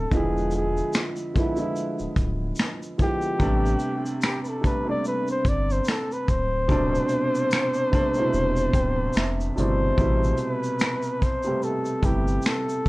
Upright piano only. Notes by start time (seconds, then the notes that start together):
Already playing: B2 C3 G3 A3 B3 D4 E4
0.11 D3 F3 G#3 B3 E4
1.34 D3 F3 G#3 B3 E4
1.56 D3 F3 G#3 B3 E4
2.98 D3 F3 G#3 B3 E4
3.39 C3 G3 A3 B3 D4
4.61 C3 G3 A3 B3 D4
4.85 C3 G3 A3 B3 D4
6.68 B2 C3 G3 A3 D4
7.92 C3 G3 A3 B3 D4
8.15 B2 C3 G3 A3 E4
8.75 G5
9.16 E5
9.56 B2 C3 G3 A3 E4 D5
9.97 B2 C3 G3 A3 E4
11.44 C3 G3 A3 B3 G4
12.02 C3 G3 A3 B3 E4